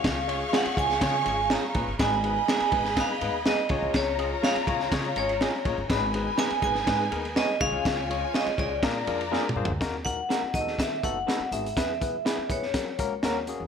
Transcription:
<<
  \new Staff \with { instrumentName = "Vibraphone" } { \time 4/4 \key cis \mixolydian \tempo 4 = 123 eis''8.~ eis''32 eis''32 fis''8 gis''4 gis''8 ais''4 | gis''4 gis''4 eis''4 dis''4 | cis''4 eis''4. cis''4. | b''4 gis''8 gis''4 r8 dis''8 eis''8~ |
eis''4 dis''8 d''4. r4 | \key dis \phrygian r8 fis''4 dis''8 e''8 fis''4 e''8 | e''4. cis''2 r8 | }
  \new Staff \with { instrumentName = "String section" } { \time 4/4 \key cis \mixolydian <gis' eis'' cis'''>1 | <gis' dis'' b''>2.~ <gis' dis'' b''>8 <eis' cis'' ais''>8~ | <eis' cis'' ais''>1 | <dis' b' gis''>2.~ <dis' b' gis''>8 <eis' cis'' gis''>8~ |
<eis' cis'' gis''>2 <eis' d'' ais''>2 | \key dis \phrygian r1 | r1 | }
  \new Staff \with { instrumentName = "Tine electric piano" } { \time 4/4 \key cis \mixolydian <gis cis' eis' gis' cis''>8 <gis cis' eis' gis' cis''>8 <gis cis' eis' gis' cis''>8 <gis cis' eis' gis' cis''>8 <gis cis' eis' gis' cis''>8 <gis cis' eis' gis' cis''>8 <gis cis' eis' gis' cis''>8 <gis cis' eis' gis' b'>8 | <gis b dis' gis' b'>8 <gis b dis' gis' b'>8 <gis b dis' gis' b'>8 <gis b dis' gis' b'>8 <gis b dis' gis' b'>8 <gis b dis' gis' b'>8 <gis b dis' gis' b'>8 <gis cis' eis' gis' cis''>8~ | <gis cis' eis' gis' cis''>8 <gis cis' eis' gis' dis''>8 <gis cis' eis' gis' cis''>8 <gis cis' eis' gis' cis''>8 <gis cis' eis' gis' cis''>8 <gis cis' eis' gis' cis''>8 <gis cis' eis' gis' dis''>8 <gis cis' eis' gis' cis''>8 | <gis b dis' gis' b'>8 <gis b dis' gis' b'>8 <gis b dis' gis' b'>8 <gis b dis' gis' b'>8 <gis b dis' gis' b'>8 <gis b dis' gis' ais'>8 <gis b dis' gis' cis''>8 <gis cis' dis' eis' gis' cis''>8~ |
<gis cis' dis' eis' gis' cis''>8 <gis cis' eis' gis' cis''>8 <gis cis' eis' gis' cis''>8 <gis cis' eis' gis' cis''>8 <ais d' eis' gis' ais'>8 <ais d' eis' gis' ais'>8 <ais d' eis' gis' ais'>8 <ais d' eis' gis' bis'>8 | \key dis \phrygian <ais dis' fis' ais'>8 <ais dis' fis' ais'>8 <ais dis' fis' ais'>8 <b dis' fis' gis' a'>4 <b dis' fis' a'>8 <b dis' fis' a'>8 <b dis' fis' gis'>8 | <b e' gis' b'>8 <b e' gis' b'>8 <b e' gis' b'>8 <b e' gis' b'>8 <ais cis' fis' ais'>8 <ais cis' fis' ais'>8 <ais cis' fis' ais'>8 <ais cis' fis' gis'>8 | }
  \new Staff \with { instrumentName = "Clean electric guitar" } { \time 4/4 \key cis \mixolydian r4 <gis cis' eis' gis'>8 r4. <gis cis' eis' gis'>8 r8 | r4 <gis b dis' gis'>8 r4. <gis b dis' gis'>8 r8 | r4 <gis cis' eis' gis'>8 r4. <gis cis' eis' gis'>8 r8 | r4 <gis b dis' gis'>8 r4. <gis b dis' gis'>8 r8 |
r4 <gis cis' eis' gis'>8 r4. <eis ais d' gis'>8 r8 | \key dis \phrygian r4 <ais dis' fis' ais'>8 r4. <a dis' fis' b'>8 r8 | r4 <b e' gis' b'>8 r4. <ais cis' fis' ais'>8 r8 | }
  \new Staff \with { instrumentName = "Upright bass" } { \clef bass \time 4/4 \key cis \mixolydian cis,4 r8 cis,8 cis8 gis,,8. r16 ais,,16 g,,16 | gis,,4 r8 gis,,8. r16 gis,16 dis,8 r16 cis,16 bis,,16 | cis,4 r8 cis,8 cis8 gis,,8. r16 ais,,16 g,,16 | gis,,4 r8 gis,,8 gis,8 dis,8. r16 cis,16 bis,,16 |
cis,4 r8 cis,8 ais,8 eis,8. r16 g,16 d,16 | \key dis \phrygian dis,4 r8 dis,8 dis8 fis,,8 r8 gis,,8 | e,4 r8 fis,8 fis8 cis,8 dis,8. e,16 | }
  \new DrumStaff \with { instrumentName = "Drums" } \drummode { \time 4/4 <bd cymr sn>8 cymr8 <cymr sn>16 cymr16 <bd cymr>16 sn16 <bd cymr sn>8 cymr8 <cymr sn>8 <bd cymr>8 | <bd cymr sn>8 cymr8 <cymr sn>16 cymr16 <bd cymr>16 sn16 <bd cymr sn>8 cymr8 <cymr sn>8 <bd cymr>8 | <bd cymr sn>8 cymr8 <cymr sn>16 cymr16 <bd cymr>16 sn16 <bd cymr sn>8 cymr16 cymr16 <cymr sn>8 <bd cymr>8 | <bd cymr sn>8 cymr8 <cymr sn>16 cymr16 <bd cymr>16 sn16 <bd cymr sn>8 cymr16 cymr16 <cymr sn>8 <bd cymr>8 |
<bd cymr sn>8 cymr8 <cymr sn>16 cymr16 <bd cymr>8 <bd cymr sn>8 cymr16 cymr16 \tuplet 3/2 { sn8 toml8 tomfh8 } | <hh bd sn>8 <hh bd>8 <hh sn>8 <hh bd>16 sn16 <hh bd sn>8 <hh bd>8 <hh sn>8 hh16 hh16 | <hh bd sn>8 <hh bd>8 <hh sn>8 <hh bd>16 sn16 <hh bd sn>8 <hh bd>8 <hh sn>8 hh8 | }
>>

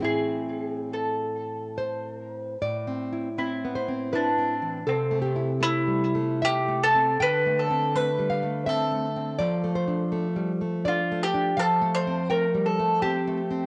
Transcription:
<<
  \new Staff \with { instrumentName = "Mandolin" } { \time 3/4 \key a \minor \tempo 4 = 81 gis'4 a'4 r4 | r4 e'4 d'4 | c'4 e'4 g'8 a'8 | b'8 a'8 b'4 a'4~ |
a'2 f'8 g'8 | \key f \major a'8 c''8 bes'8 a'8 g'4 | }
  \new Staff \with { instrumentName = "Nylon-string guitar" } { \time 3/4 \key a \minor << { r2 c''4 | d''4. c''8 b'4 | a'8 g'4. e''4 | g''4. f''8 e''4 |
d''8 c''4. d''8 r8 | \key f \major f''4 g''4 a''4 | } \\ { <a, c' e'>2. | \tuplet 3/2 { a,8 c'8 e'8 c'8 b8 c'8 e'8 c'8 e8 } | \tuplet 3/2 { c8 a8 e'8 a8 g8 a8 e'8 a8 c'8 } | \tuplet 3/2 { d8 a8 c'8 a8 g8 a8 c'8 a8 c'8 } |
\tuplet 3/2 { f8 a8 d'8 a8 g8 a8 d'8 a8 d'8 } | \tuplet 3/2 { f8 a8 c'8 a8 g8 a8 c'8 a8 c'8 } | } >> }
>>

